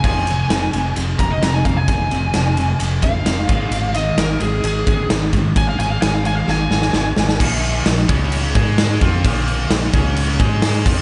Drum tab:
CC |x---------------|----------------|----------------|----------------|
RD |--x-x-x-x-x-x-x-|x-x-x-x-x-x-x-x-|x-x-x-x-x-x-x-x-|x-x-x-x---------|
SD |----o-------o---|----o-------o---|----o-------o---|----o---o-ooo-oo|
BD |o---------o---o-|o---------o---o-|----------o---o-|o---------------|

CC |x-x-x-x-x-x-x-x-|x-x-x-x-x-x-x-x-|
RD |----------------|----------------|
SD |----o-------o---|----o-------o---|
BD |o-----o---o---o-|o-----o---o---o-|